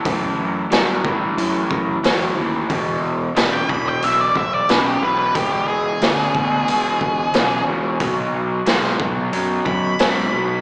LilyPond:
<<
  \new Staff \with { instrumentName = "Lead electric guitar" } { \time 4/4 \key e \mixolydian \tempo 4 = 90 r1 | r4 b''16 g''16 b''16 g''16 e''16 d''16 e''16 d''16 b'16 g'16 b'16 b'16 | g'16 g'16 gis'2. r8 | r2 r8 b''4. | }
  \new Staff \with { instrumentName = "Overdriven electric guitar" } { \clef bass \time 4/4 \key e \mixolydian <a, e>4 <a, fis>8 <a, e>8 <a, e>4 <a, fis>8 <a, e>8 | <e, b,>4 <e, cis>8 <e, b,>8 <e, b,>4 <e, cis>8 <e, b,>8 | <e, b,>4 <e, cis>8 <e, b,>8 <e, b,>4 <e, cis>8 <e, b,>8 | <b, fis>4 <b, gis>8 <b, fis>8 <b, fis>4 <b, gis>8 <b, fis>8 | }
  \new Staff \with { instrumentName = "Picked electric bass" } { \clef bass \time 4/4 \key e \mixolydian fis,8 fis,8 g,8 g,8 fis,8 fis,8 e,8 dis,8 | e,,8 e,,8 e,,8 e,,8 b,,8 b,,8 b,,8 b,,8 | cis,8 cis,8 d,8 d,8 cis,8 cis,8 b,,8 cis,8 | b,,8 b,,8 b,,8 b,,8 fis,8 fis,8 fis,8 b,,8 | }
  \new DrumStaff \with { instrumentName = "Drums" } \drummode { \time 4/4 <hho bd>4 <hho sn>8 bd8 hho8 bd8 <hho sn>4 | <hho bd>4 <hho sn>8 bd8 hho8 bd8 <hho sn>4 | <hho bd>4 <hho sn>8 bd8 hho8 bd8 <hho sn>4 | <hho bd>4 <hho sn>16 sn16 bd8 hho8 bd8 <hho sn>4 | }
>>